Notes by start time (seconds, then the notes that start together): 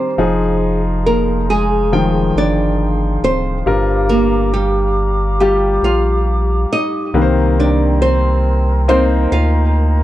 Already playing: D#3 G3 C4 C5 D5 G5 A#5 D6
0.18 F1 F3 D#4 G#4 F5 C6
1.06 A#3 A#4
1.50 G#3 G#4
1.93 D#3 F3 G5
2.35 G1 D4 D5
3.22 D1 C4 C5
3.65 G1 G2 G3 F4 G4 A#4 A#5 D6
4.09 A#3 A#4
4.53 G3 G4
5.40 G3 F4 G4
5.82 A#1 F4 F5
6.72 D#4 D#5
7.13 C2 C3 D#3 A#3 A#4 B4 G5 A#5 C6
7.22 C5
7.59 D4 D5
8.02 C4 C5
8.88 A#3 C4 D#4 C5
9.32 D2 F4 F5